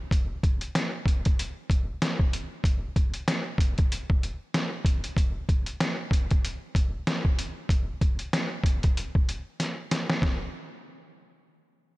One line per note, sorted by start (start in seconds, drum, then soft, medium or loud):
0.11 kick loud
0.11 closed hi-hat loud
0.43 kick medium
0.43 closed hi-hat medium
0.61 closed hi-hat medium
0.75 snare loud
0.75 closed hi-hat medium
1.06 kick loud
1.06 closed hi-hat medium
1.25 kick medium
1.25 closed hi-hat soft
1.39 closed hi-hat loud
1.70 kick loud
1.70 closed hi-hat medium
2.02 snare loud
2.02 closed hi-hat medium
2.19 kick loud
2.33 closed hi-hat medium
2.64 kick loud
2.64 closed hi-hat loud
2.96 kick medium
2.96 closed hi-hat medium
3.14 closed hi-hat medium
3.28 snare loud
3.28 closed hi-hat medium
3.58 kick loud
3.58 closed hi-hat medium
3.78 kick medium
3.78 closed hi-hat medium
3.92 closed hi-hat loud
4.10 kick loud
4.23 closed hi-hat medium
4.54 snare loud
4.54 closed hi-hat medium
4.85 kick loud
4.85 closed hi-hat medium
5.04 closed hi-hat medium
5.17 kick loud
5.17 closed hi-hat loud
5.49 kick medium
5.49 closed hi-hat medium
5.66 closed hi-hat medium
5.80 snare loud
5.80 closed hi-hat medium
6.11 kick medium
6.11 closed hi-hat medium
6.31 kick medium
6.31 closed hi-hat soft
6.45 closed hi-hat medium
6.75 kick medium
6.75 closed hi-hat medium
7.07 snare loud
7.07 closed hi-hat medium
7.25 kick medium
7.39 closed hi-hat medium
7.69 kick loud
7.69 closed hi-hat loud
8.01 kick medium
8.01 closed hi-hat medium
8.19 closed hi-hat soft
8.33 snare loud
8.33 closed hi-hat medium
8.64 kick medium
8.64 closed hi-hat medium
8.83 kick medium
8.83 closed hi-hat soft
8.97 closed hi-hat medium
9.15 kick medium
9.29 closed hi-hat medium
9.60 snare medium
9.60 closed hi-hat medium
9.91 snare medium
9.91 closed hi-hat medium
10.10 snare medium
10.22 kick loud
10.22 snare loud